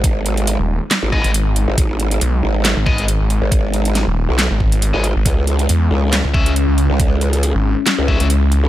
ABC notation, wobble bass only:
X:1
M:4/4
L:1/16
Q:"Swing 16ths" 1/4=138
K:G#m
V:1 name="Wobble bass" clef=bass
G,,,4- G,,, z4 G,,,2 z4 G,,, | G,,,4 z2 G,,,3 z6 G,,,- | G,,,4- G,,, z2 B,,,2 z4 G,,,2 z | C,,4 z2 C,,3 z6 C,,- |
C,,4- C,, z4 C,,2 z4 C,, |]